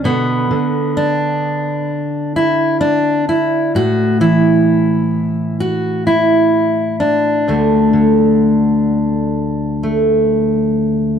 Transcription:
0.04 0.50 B2 medium
0.04 0.49 D3 soft
0.04 1.89 B3 medium
0.51 3.75 D3 medium
0.97 2.36 D4 medium
2.36 2.80 E4 medium
2.81 3.28 D4 medium
3.29 3.75 E4 medium
3.75 7.47 A2 medium
3.75 4.21 F#4 loud
4.20 7.41 E3 medium
4.20 5.60 E4 medium
5.60 6.06 F#4 medium
6.07 7.00 E4 medium
7.00 11.19 D4 medium
7.48 11.19 D2 medium
7.48 7.92 D3 soft
7.48 9.82 A3 medium
7.93 11.19 D3 medium
9.83 11.19 A3 soft

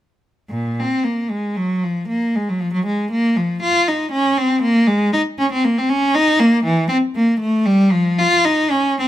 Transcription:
0.50 0.78 A#2 medium
0.79 1.05 C4 medium
1.04 1.30 A#3 medium
1.30 1.56 G#3 medium
1.57 1.83 F#3 medium
1.83 2.09 F3 medium
2.08 2.34 A#3 medium
2.36 2.48 G#3 medium
2.49 2.61 F#3 medium
2.60 2.73 F3 medium
2.73 2.86 F#3 medium
2.86 3.11 G#3 medium
3.12 3.37 A#3 medium
3.36 3.63 F3 medium
3.62 3.88 F4 loud
3.88 4.14 D#4 medium
4.12 4.38 C#4 medium
4.38 4.63 C4 loud
4.62 4.88 A#3 loud
4.87 5.13 G#3 medium
5.13 5.21 D#4 loud
5.39 5.52 C#4 medium
5.52 5.65 C4 medium
5.64 5.77 A#3 medium
5.78 5.91 C4 medium
5.90 6.15 C#4 loud
6.15 6.40 D#4 loud
6.40 6.65 A#3 loud
6.64 6.90 E3 loud
6.89 6.97 C4 loud
7.16 7.41 A#3 medium
7.40 7.66 A3 loud
7.66 7.92 G3 loud
7.92 8.18 F3 medium
8.19 8.45 F4 loud
8.45 8.71 D#4 loud
8.71 8.97 C#4 medium
8.99 9.07 C4 medium

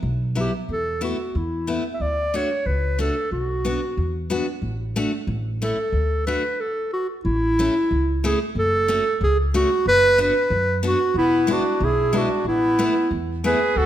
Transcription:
0.03 0.45 B1 medium
0.35 0.50 F#3 soft
0.35 0.51 B3 soft
0.35 0.51 E4 soft
0.40 0.54 G4 medium
0.69 1.11 E2 medium
0.69 1.02 A4 medium
1.01 1.16 A3 medium
1.01 1.16 B3 soft
1.01 1.16 E4 medium
1.01 1.39 F#4 medium
1.35 1.78 E2 medium
1.35 1.86 E4 medium
1.67 1.82 A3 soft
1.67 1.83 B3 soft
1.67 1.83 E4 medium
1.94 2.03 E5 medium
2.00 2.43 D2 medium
2.00 2.38 D5 medium
2.34 2.48 A3 medium
2.34 2.49 D4 soft
2.34 2.49 F#4 medium
2.34 2.68 C#5 medium
2.66 3.09 C#2 medium
2.66 3.00 B4 medium
2.99 3.14 A3 medium
2.99 3.14 D4 soft
2.99 3.14 F#4 soft
2.99 3.30 A4 medium
3.31 3.74 B1 medium
3.31 4.27 F#4 medium
3.65 3.80 B3 medium
3.65 3.80 D4 soft
3.65 3.80 F#4 medium
3.97 4.40 E2 medium
4.30 4.45 B3 medium
4.30 4.45 D4 soft
4.30 4.45 F#4 medium
4.62 5.05 A1 medium
4.96 5.11 A3 medium
4.96 5.11 D4 medium
4.96 5.11 F#4 medium
5.27 5.70 A1 medium
5.62 5.76 A3 medium
5.62 5.77 C#4 soft
5.62 5.77 E4 medium
5.62 6.24 A4 medium
5.92 6.36 D2 medium
6.27 6.42 A3 soft
6.27 6.42 D4 soft
6.27 6.42 F#4 medium
6.27 6.62 B4 medium
6.60 6.93 A4 medium
6.93 7.07 F#4 medium
7.25 7.67 A1 medium
7.25 8.20 E4 medium
7.59 7.73 A3 medium
7.59 7.74 C#4 medium
7.59 7.74 E4 medium
7.91 8.33 C#2 medium
8.24 8.38 A3 medium
8.24 8.38 C#4 soft
8.24 8.39 E4 medium
8.24 8.39 G#4 medium
8.55 8.98 F#1 medium
8.55 9.18 A4 medium
8.88 9.03 A3 medium
8.88 9.03 C#4 medium
8.88 9.03 F#4 medium
9.21 9.63 C#2 medium
9.21 9.38 G#4 medium
9.54 9.68 A3 medium
9.54 9.68 C#4 medium
9.54 9.69 F#4 medium
9.54 9.84 F#4 medium
9.86 10.28 F#1 medium
9.86 10.18 B4 loud
10.18 10.33 B3 medium
10.18 10.33 D4 medium
10.18 10.33 F#4 medium
10.18 10.81 B4 medium
10.50 10.92 F#2 medium
10.83 10.97 B3 medium
10.83 10.98 D4 soft
10.83 10.98 F#4 medium
10.83 11.14 F#4 medium
11.14 11.57 E1 medium
11.14 11.53 B3 medium
11.14 11.55 E4 medium
11.47 11.62 G#3 medium
11.47 11.62 B3 medium
11.47 11.62 E4 medium
11.51 11.85 D4 medium
11.51 11.86 F#4 medium
11.80 12.23 B1 medium
11.80 12.17 E4 medium
11.80 12.19 G#4 medium
12.13 12.27 G#3 medium
12.13 12.28 B3 medium
12.13 12.46 D4 medium
12.13 12.28 E4 soft
12.18 12.47 F#4 medium
12.44 12.87 A1 medium
12.44 13.13 B3 medium
12.44 13.13 E4 medium
12.79 12.93 A3 medium
12.79 12.93 B3 medium
12.79 12.93 E4 medium
13.11 13.53 E2 medium
13.44 13.58 A3 medium
13.44 13.58 B3 medium
13.44 13.58 E4 soft
13.44 13.79 G#4 medium
13.44 13.78 B4 medium
13.76 13.86 D2 medium
13.76 13.86 F#4 medium
13.76 13.86 A4 loud

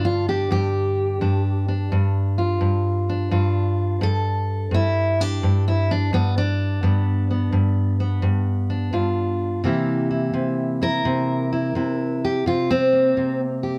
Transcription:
0.00 0.50 G2 medium
0.00 1.21 D3 medium
0.05 0.28 F4 medium
0.28 1.21 D4 soft
0.28 0.51 G4 medium
0.51 1.21 G2 medium
0.51 1.92 G4 medium
1.21 1.91 G2 medium
1.21 1.68 D4 soft
1.68 3.09 D4 soft
1.92 2.60 G2 medium
2.38 3.32 F4 soft
2.61 3.31 G2 medium
3.09 4.77 D4 soft
3.31 4.01 G2 medium
3.31 4.03 F4 soft
4.01 4.71 G2 medium
4.01 4.73 A4 medium
4.71 5.43 G2 medium
4.71 5.21 E4 medium
5.21 5.90 D4 soft
5.21 5.67 G4 medium
5.43 6.12 G2 medium
5.68 5.90 E4 medium
5.91 6.14 D4 medium
6.13 6.80 G2 medium
6.13 6.37 B3 medium
6.38 8.48 D4 loud
6.83 7.51 G2 medium
6.83 7.29 B3 soft
7.31 7.99 B3 soft
7.52 8.21 G2 medium
8.00 9.62 B3 soft
8.22 8.92 G2 medium
8.70 9.61 D4 soft
8.93 9.61 G2 medium
8.93 9.61 F4 soft
9.64 10.33 C3 medium
9.64 12.43 E3 soft
9.64 12.43 A#3 soft
9.64 10.09 E4 soft
9.64 10.82 G4 soft
10.10 10.80 E4 soft
10.34 11.05 C3 medium
10.81 11.51 E4 soft
10.81 12.23 A#4 loud
11.05 11.74 C3 medium
11.52 11.75 E4 medium
11.75 12.43 C3 medium
11.75 12.43 E4 soft
12.25 12.47 G4 medium
12.46 13.16 C3 medium
12.46 12.70 F4 medium
12.71 13.40 C4 loud
12.93 13.79 A#3 soft
13.17 13.79 C3 medium
13.63 13.79 G4 medium

